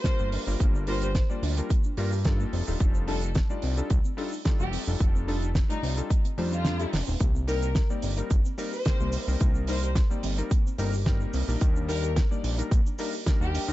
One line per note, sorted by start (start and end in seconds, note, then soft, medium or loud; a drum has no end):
0.00 0.47 C5 medium
0.04 0.44 G3 medium
0.04 0.44 A#3 medium
0.04 0.44 D4 medium
0.04 0.44 F4 medium
0.04 0.10 A#4 loud
0.04 0.44 A#4 medium
0.04 kick loud
0.04 snare loud
0.04 closed hi-hat medium
0.04 shaker medium
0.19 0.37 G1 medium
0.19 0.28 A#3 medium
0.19 shaker medium
0.32 0.42 D4 loud
0.32 open hi-hat loud
0.47 0.56 G1 medium
0.47 0.84 G3 medium
0.47 0.85 A#3 medium
0.47 0.85 D4 medium
0.47 0.55 F4 medium
0.47 0.85 F4 medium
0.47 0.85 A#4 medium
0.47 shaker medium
0.60 1.22 G1 loud
0.60 0.73 A#3 medium
0.60 kick loud
0.60 closed hi-hat medium
0.60 shaker medium
0.75 0.86 D4 medium
0.75 shaker soft
0.87 1.07 G3 medium
0.87 1.07 A#3 medium
0.87 1.07 D4 medium
0.87 0.93 F4 loud
0.87 1.07 F4 medium
0.87 1.07 A#4 loud
0.87 0.97 C5 medium
0.87 open hi-hat loud
1.01 1.14 G4 medium
1.01 1.11 C5 medium
1.01 closed hi-hat medium
1.01 shaker medium
1.15 1.21 A#4 loud
1.15 kick loud
1.15 snare loud
1.15 closed hi-hat medium
1.15 shaker medium
1.29 1.54 G3 medium
1.29 1.54 A#3 medium
1.29 1.38 A#3 medium
1.29 1.54 D4 medium
1.29 1.54 F4 medium
1.29 1.54 D5 medium
1.29 shaker medium
1.43 1.61 D2 medium
1.43 1.52 D4 loud
1.43 open hi-hat loud
1.57 1.68 G3 medium
1.57 1.68 A#3 medium
1.57 1.68 D4 medium
1.57 1.65 F4 medium
1.57 1.69 F4 medium
1.57 1.69 A#4 medium
1.57 closed hi-hat medium
1.57 shaker medium
1.70 1.83 A#3 medium
1.70 kick loud
1.70 closed hi-hat medium
1.70 shaker medium
1.84 1.97 D4 medium
1.84 shaker medium
1.97 2.46 G2 medium
1.97 2.10 G3 medium
1.97 2.10 A#3 medium
1.97 2.10 D4 medium
1.97 2.10 F4 medium
1.97 2.03 F4 loud
1.97 2.10 A#4 loud
1.97 open hi-hat loud
2.12 2.24 G4 medium
2.12 shaker medium
2.25 2.64 G3 medium
2.25 2.64 D4 medium
2.25 2.64 D#4 medium
2.25 2.64 F4 medium
2.25 2.64 A4 medium
2.25 2.31 A#4 loud
2.25 kick loud
2.25 snare loud
2.25 closed hi-hat medium
2.25 shaker medium
2.40 2.48 A#3 medium
2.40 shaker soft
2.53 2.63 F1 medium
2.53 2.62 C4 loud
2.53 open hi-hat loud
2.67 2.76 D#1 medium
2.67 3.04 G3 medium
2.67 3.05 D4 medium
2.67 2.75 D4 medium
2.67 3.05 D#4 medium
2.67 3.05 F4 medium
2.67 3.05 A4 medium
2.67 shaker medium
2.80 3.42 F1 medium
2.80 2.93 A3 medium
2.80 kick loud
2.80 closed hi-hat medium
2.80 shaker medium
2.95 3.07 C4 medium
2.95 shaker medium
3.07 3.27 G3 medium
3.07 3.27 D4 medium
3.07 3.13 D4 loud
3.07 3.27 D#4 medium
3.07 3.27 F4 medium
3.07 3.17 A4 medium
3.07 3.27 A4 loud
3.07 open hi-hat loud
3.22 3.34 D#4 medium
3.22 3.31 A4 medium
3.22 closed hi-hat medium
3.22 shaker medium
3.35 3.41 F4 loud
3.35 kick loud
3.35 snare loud
3.35 closed hi-hat medium
3.35 shaker medium
3.50 3.74 G3 medium
3.50 3.58 A3 medium
3.50 3.74 D4 medium
3.50 3.74 D#4 medium
3.50 3.74 F4 medium
3.50 3.74 D5 medium
3.50 shaker soft
3.62 3.82 C2 medium
3.62 3.72 C4 loud
3.62 open hi-hat loud
3.77 3.88 G3 medium
3.77 3.88 D4 medium
3.77 3.85 D4 medium
3.77 3.88 D#4 medium
3.77 3.89 F4 medium
3.77 3.89 A4 medium
3.77 closed hi-hat medium
3.77 shaker medium
3.90 4.00 C2 medium
3.90 4.04 A3 medium
3.90 kick loud
3.90 closed hi-hat medium
3.90 shaker medium
4.05 4.17 C4 medium
4.05 shaker soft
4.17 4.30 G3 medium
4.17 4.30 D4 medium
4.17 4.23 D4 loud
4.17 4.30 D#4 medium
4.17 4.30 F4 medium
4.17 4.30 A4 loud
4.17 open hi-hat loud
4.32 4.44 D#4 medium
4.32 shaker medium
4.45 4.84 G3 medium
4.45 4.84 D4 medium
4.45 4.84 D#4 medium
4.45 4.51 F4 loud
4.45 4.84 F4 medium
4.45 4.84 A4 medium
4.45 kick loud
4.45 snare loud
4.45 closed hi-hat medium
4.45 shaker medium
4.60 4.78 F1 medium
4.60 4.68 A3 medium
4.60 4.74 G4 medium
4.60 shaker medium
4.73 4.82 C4 loud
4.73 open hi-hat loud
4.87 4.96 F1 loud
4.87 5.25 G3 medium
4.87 4.95 D4 medium
4.87 5.25 D4 medium
4.87 5.25 D#4 medium
4.87 5.25 F4 medium
4.87 5.25 A4 medium
4.87 shaker medium
5.00 5.62 F1 loud
5.00 5.14 A3 medium
5.00 kick loud
5.00 closed hi-hat medium
5.00 shaker medium
5.15 5.27 C4 medium
5.15 shaker soft
5.28 5.47 G3 medium
5.28 5.33 D4 loud
5.28 5.47 D4 medium
5.28 5.47 D#4 medium
5.28 5.47 F4 medium
5.28 5.47 A4 loud
5.28 open hi-hat loud
5.42 5.54 D#4 medium
5.42 closed hi-hat medium
5.42 shaker medium
5.55 5.61 F4 loud
5.55 kick loud
5.55 snare loud
5.55 closed hi-hat medium
5.55 shaker medium
5.69 5.94 G3 medium
5.69 5.78 A3 medium
5.69 5.94 D4 medium
5.69 5.83 D#4 medium
5.69 5.94 D#4 medium
5.69 5.94 F4 medium
5.69 5.94 D5 medium
5.69 closed hi-hat medium
5.69 shaker medium
5.83 6.02 C2 medium
5.83 5.92 C4 loud
5.83 open hi-hat loud
5.97 6.08 G3 medium
5.97 6.08 D4 medium
5.97 6.05 D4 medium
5.97 6.08 D#4 medium
5.97 6.09 F4 medium
5.97 6.09 A4 medium
5.97 closed hi-hat medium
5.97 shaker medium
6.10 6.24 A3 medium
6.10 kick loud
6.10 closed hi-hat medium
6.10 shaker medium
6.25 6.37 C4 medium
6.25 closed hi-hat medium
6.25 shaker soft
6.37 6.86 F2 medium
6.37 6.76 G3 medium
6.37 6.47 A3 medium
6.37 6.77 D4 medium
6.37 6.77 D#4 medium
6.37 6.77 F4 medium
6.37 6.77 C5 loud
6.37 open hi-hat medium
6.52 6.60 C4 medium
6.52 7.07 F4 medium
6.52 closed hi-hat medium
6.52 shaker medium
6.65 6.78 D4 medium
6.65 snare loud
6.65 closed hi-hat medium
6.65 shaker medium
6.79 6.91 G3 medium
6.79 6.91 D4 medium
6.79 6.91 D#4 medium
6.79 6.91 F4 medium
6.79 6.88 G4 loud
6.79 6.91 A4 medium
6.79 closed hi-hat medium
6.79 shaker soft
6.92 7.03 F1 medium
6.92 6.98 F4 loud
6.92 snare medium
6.92 open hi-hat loud
7.07 7.16 D#1 medium
7.07 7.15 D#4 loud
7.07 shaker medium
7.20 7.82 C2 loud
7.20 7.34 A#3 medium
7.20 kick loud
7.20 closed hi-hat loud
7.20 cabasa soft
7.20 shaker medium
7.35 7.47 C4 medium
7.35 shaker medium
7.47 7.67 G3 medium
7.47 7.67 A#3 medium
7.47 7.67 C4 medium
7.47 7.53 D#4 loud
7.47 7.67 D#4 medium
7.47 7.57 A#4 medium
7.47 7.67 A#4 loud
7.47 open hi-hat loud
7.47 cabasa loud
7.62 7.74 G4 medium
7.62 7.71 A#4 medium
7.62 closed hi-hat medium
7.62 cabasa soft
7.62 shaker medium
7.75 7.81 A#4 loud
7.75 kick loud
7.75 snare loud
7.75 closed hi-hat medium
7.75 cabasa medium
7.75 shaker medium
7.90 8.14 G3 medium
7.90 7.98 A#3 medium
7.90 8.14 A#3 medium
7.90 8.14 C4 medium
7.90 8.14 D#4 medium
7.90 8.14 D5 medium
7.90 shaker medium
8.02 8.22 G1 medium
8.02 8.12 C4 loud
8.02 open hi-hat loud
8.02 cabasa medium
8.17 8.28 G3 medium
8.17 8.28 A#3 medium
8.17 8.29 C4 medium
8.17 8.25 D#4 medium
8.17 8.29 D#4 medium
8.17 8.29 A#4 medium
8.17 closed hi-hat medium
8.17 cabasa soft
8.17 shaker medium
8.30 8.40 G1 medium
8.30 8.44 A#3 medium
8.30 kick loud
8.30 closed hi-hat medium
8.30 cabasa soft
8.30 shaker medium
8.45 8.57 C4 medium
8.45 cabasa soft
8.45 shaker medium
8.58 8.70 G3 medium
8.58 8.70 A#3 medium
8.58 8.71 C4 medium
8.58 8.63 D#4 loud
8.58 8.71 D#4 medium
8.58 8.71 A#4 loud
8.58 open hi-hat loud
8.58 cabasa loud
8.72 8.84 G4 medium
8.72 9.28 C5 medium
8.72 cabasa soft
8.72 shaker medium
8.85 9.24 G3 medium
8.85 9.24 A#3 medium
8.85 9.24 C4 medium
8.85 9.25 D#4 medium
8.85 8.91 A#4 loud
8.85 9.25 A#4 medium
8.85 kick loud
8.85 snare loud
8.85 closed hi-hat loud
8.85 cabasa medium
8.85 shaker medium
9.00 9.18 C2 medium
9.00 9.08 A#3 medium
9.00 shaker soft
9.12 9.22 C4 loud
9.12 open hi-hat loud
9.12 cabasa loud
9.28 9.36 C2 medium
9.28 9.65 G3 medium
9.28 9.65 A#3 medium
9.28 9.65 C4 medium
9.28 9.36 D#4 medium
9.28 9.65 D#4 medium
9.28 9.66 A#4 medium
9.28 cabasa soft
9.28 shaker medium
9.40 10.03 C2 loud
9.40 9.54 A#3 medium
9.40 kick loud
9.40 closed hi-hat medium
9.40 cabasa medium
9.40 shaker medium
9.55 9.67 C4 medium
9.55 shaker soft
9.67 9.87 G3 medium
9.67 9.88 A#3 medium
9.67 9.88 C4 medium
9.67 9.74 D#4 loud
9.67 9.88 D#4 medium
9.67 9.88 A#4 loud
9.67 9.78 C5 medium
9.67 open hi-hat loud
9.67 cabasa medium
9.83 9.95 G4 medium
9.83 9.91 C5 medium
9.83 closed hi-hat medium
9.83 cabasa soft
9.83 shaker medium
9.95 10.01 A#4 loud
9.95 kick loud
9.95 snare loud
9.95 closed hi-hat medium
9.95 cabasa medium
9.95 shaker medium
10.10 10.34 G3 medium
10.10 10.35 A#3 medium
10.10 10.18 A#3 medium
10.10 10.35 C4 medium
10.10 10.35 D#4 medium
10.10 10.35 D5 medium
10.10 shaker medium
10.23 10.42 G1 medium
10.23 10.32 C4 loud
10.23 open hi-hat loud
10.23 cabasa medium
10.38 10.49 G3 medium
10.38 10.49 A#3 medium
10.38 10.49 C4 medium
10.38 10.46 D#4 medium
10.38 10.49 D#4 medium
10.38 10.49 A#4 medium
10.38 closed hi-hat medium
10.38 cabasa soft
10.38 shaker medium
10.51 10.64 A#3 medium
10.51 kick loud
10.51 closed hi-hat medium
10.51 cabasa medium
10.51 shaker medium
10.66 10.77 C4 medium
10.66 cabasa soft
10.66 shaker medium
10.78 11.27 G1 medium
10.78 10.91 G3 medium
10.78 10.91 A#3 medium
10.78 10.91 C4 medium
10.78 10.84 D#4 loud
10.78 10.91 D#4 medium
10.78 10.91 A#4 loud
10.78 open hi-hat loud
10.78 cabasa loud
10.93 11.05 G4 medium
10.93 cabasa soft
10.93 shaker medium
11.06 11.44 G3 medium
11.06 11.44 A#3 medium
11.06 11.45 C4 medium
11.06 11.45 D#4 medium
11.06 11.11 A#4 loud
11.06 11.45 A#4 medium
11.06 kick loud
11.06 snare loud
11.06 closed hi-hat medium
11.06 cabasa medium
11.06 shaker medium
11.21 11.29 A#3 medium
11.21 shaker soft
11.33 11.43 C2 medium
11.33 11.42 C4 loud
11.33 open hi-hat loud
11.33 cabasa loud
11.48 11.57 A#1 medium
11.48 11.85 G3 medium
11.48 11.85 A#3 medium
11.48 11.86 D4 medium
11.48 11.56 D#4 medium
11.48 11.86 D#4 medium
11.48 11.86 A#4 medium
11.48 cabasa soft
11.48 shaker medium
11.61 12.23 D#2 loud
11.61 11.74 A#3 medium
11.61 kick loud
11.61 closed hi-hat medium
11.61 cabasa medium
11.61 shaker medium
11.76 11.88 D4 medium
11.76 shaker soft
11.88 12.08 G3 medium
11.88 12.08 A#3 medium
11.88 12.08 D4 medium
11.88 11.94 D#4 loud
11.88 12.08 D#4 medium
11.88 11.98 A#4 medium
11.88 12.08 A#4 loud
11.88 open hi-hat loud
11.88 cabasa medium
12.03 12.15 G4 medium
12.03 12.11 A#4 medium
12.03 closed hi-hat medium
12.03 cabasa soft
12.03 shaker medium
12.16 12.22 A#4 loud
12.16 kick loud
12.16 snare loud
12.16 closed hi-hat medium
12.16 cabasa medium
12.16 shaker medium
12.30 12.55 G3 medium
12.30 12.55 A#3 medium
12.30 12.39 A#3 medium
12.30 12.55 D4 medium
12.30 12.55 D#4 medium
12.30 12.55 D5 medium
12.30 shaker medium
12.44 12.62 A#1 medium
12.44 12.53 D4 loud
12.44 open hi-hat loud
12.44 cabasa loud
12.58 12.69 G3 medium
12.58 12.69 A#3 medium
12.58 12.69 D4 medium
12.58 12.66 D#4 medium
12.58 12.69 D#4 medium
12.58 12.70 A#4 medium
12.58 closed hi-hat medium
12.58 cabasa soft
12.58 shaker medium
12.71 12.81 A#1 medium
12.71 12.84 A#3 medium
12.71 kick loud
12.71 closed hi-hat medium
12.71 cabasa medium
12.71 shaker medium
12.86 12.98 D4 medium
12.86 cabasa soft
12.86 shaker soft
12.98 13.11 G3 medium
12.98 13.11 A#3 medium
12.98 13.11 D4 medium
12.98 13.04 D#4 loud
12.98 13.11 D#4 medium
12.98 13.11 A#4 loud
12.98 open hi-hat loud
12.98 cabasa medium
13.13 13.25 G4 medium
13.13 cabasa soft
13.13 shaker medium
13.26 13.65 G3 medium
13.26 13.65 A#3 medium
13.26 13.65 D4 medium
13.26 13.65 D#4 medium
13.26 13.32 A#4 loud
13.26 13.65 A#4 medium
13.26 kick loud
13.26 snare loud
13.26 closed hi-hat medium
13.26 cabasa medium
13.26 shaker medium
13.41 13.58 D#2 medium
13.41 13.49 A#3 medium
13.41 13.54 G4 medium
13.41 shaker soft
13.54 13.63 D4 loud
13.54 open hi-hat loud
13.54 cabasa loud
13.68 13.73 D#2 loud
13.68 13.73 G3 medium
13.68 13.73 A#3 medium
13.68 13.73 D4 medium
13.68 13.73 D#4 medium
13.68 13.73 A#4 medium
13.68 cabasa soft
13.68 shaker medium